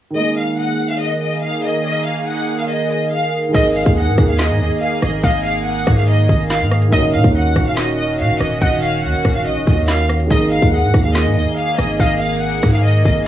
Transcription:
0.11 D#3 G#3
0.16 D#3 A#3 G#4 D#5
0.22 G#4
0.38 F5
0.59 F#5
0.90 F5
1.01 D#5
1.22 D#5
1.43 F5
1.64 D#5
1.85 D#5
2.07 F5
2.28 F#5
2.59 F5
2.70 D#5
2.91 D#5
3.12 F5
3.49 D#3 G#3
3.54 G#1 D#3 A#3 G#4 D#5, kick, closed hi-hat, crash
3.59 A#4
3.75 F5, closed hi-hat
3.86 D#2, kick
3.97 F#5
4.07 G#2
4.18 D#2, kick, cross-stick, closed hi-hat
4.29 F5
4.39 D#5, snare, clap, closed hi-hat
4.50 G#2
4.60 D#2 D#5
4.81 F5, closed hi-hat
5.02 G#1 D#5, cross-stick, closed hi-hat
5.24 G#1 D#5 F5, kick, closed hi-hat
5.45 F5, closed hi-hat
5.66 F#5
5.87 G#2, kick, cross-stick, closed hi-hat
5.97 F5
6.08 D#5, closed hi-hat
6.29 G#1 D#5, kick
6.50 F5, snare, clap, closed hi-hat
6.61 G#2, closed hi-hat
6.71 cross-stick, closed hi-hat
6.82 closed hi-hat
6.88 D#3 A#3
6.92 D#1 C#4 F#4 D#5, kick, closed hi-hat
6.99 A#4
7.14 A#2 F5, closed hi-hat
7.24 D#2, kick
7.35 F#5
7.56 D#1, kick, cross-stick, closed hi-hat
7.67 F5
7.77 D#5, snare, clap, closed hi-hat
7.98 D#5
8.19 A#2 F5, closed hi-hat
8.30 D#1
8.40 D#1 D#5, cross-stick, closed hi-hat
8.62 D#1 D#5 F#5, kick, closed hi-hat
8.83 F5, closed hi-hat
9.04 D#2 F#5
9.14 D#1
9.25 D#1, kick, cross-stick, closed hi-hat
9.35 F5
9.46 A#1 D#5, closed hi-hat
9.57 D#1
9.67 D#2 D#5, kick
9.88 F5, snare, clap, closed hi-hat
9.99 closed hi-hat
10.09 cross-stick, closed hi-hat
10.20 closed hi-hat
10.25 D#3 G#3
10.30 G#1 A#3 G#4 D#5, kick, closed hi-hat
10.36 A#4
10.52 F5, closed hi-hat
10.62 D#2, kick
10.73 F#5
10.83 G#2
10.94 D#2, kick, cross-stick, closed hi-hat
11.05 F5
11.15 D#5, snare, clap, closed hi-hat
11.26 G#2
11.36 D#2 D#5
11.57 F5, closed hi-hat
11.79 G#1 D#5, cross-stick, closed hi-hat
12.00 G#1 D#5 F5, kick, closed hi-hat
12.21 F5, closed hi-hat
12.42 F#5
12.63 G#2, kick, cross-stick, closed hi-hat
12.73 F5
12.84 D#5, closed hi-hat
13.05 G#1 D#5, kick

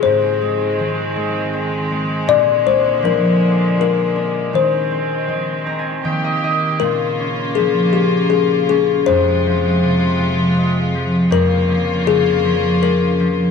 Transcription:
Already playing: G#3 F4
0.03 G#2 D#3 C4 C5
0.42 G#3
0.80 D#3
1.16 G#3
1.53 C4
1.91 G#3
2.28 A#2 D3 A#3 D5
2.65 D4 C5
3.03 F3 A#4
3.40 D4
3.77 F4 A#4
4.16 D4
4.53 D#3 C4 C5
4.91 C4
5.28 D#3
5.66 C4 A#5
5.79 G#5
6.03 D#3 A#3 G4 G5
6.24 D#5
6.43 D#4 D#5
6.80 A#2 C#3 F4 A#4
7.20 C#4
7.55 F3 G#4
7.93 C#4 G4
8.30 F4 G#4
8.69 C#4 G#4
9.06 F2 C3 G#3 F4 C5
9.46 F3
9.83 C3
10.19 F3
10.58 G#3
10.94 F3
11.30 F2 C#3 A#3 F4 A#4
11.68 F3
12.06 C#3 G#4
12.44 F3
12.82 C#4 A#4
13.20 F3

